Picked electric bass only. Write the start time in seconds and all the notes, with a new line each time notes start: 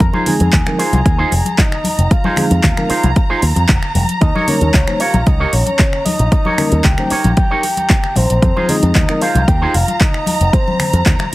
0.00 F2
0.40 F2
0.53 D#2
0.93 C2
1.06 D#2
1.32 F1
1.98 F1
2.51 F2
2.64 D#2
2.90 muted picked electric bass stroke
3.04 C2
3.42 D#2
3.56 F2
3.69 F1
3.95 F1
4.22 D#2
4.61 D#2
4.74 C#2
5.14 A#1
5.27 C#2
5.53 A#1
6.19 A#1
6.72 D#2
6.84 C#2
7.11 muted picked electric bass stroke
7.25 A#1
8.17 A#1
8.30 A#1
8.42 F2
8.83 F2
8.95 D#2
9.35 C2
9.48 D#2
9.74 F1
10.41 F1
10.93 F2
11.06 D#2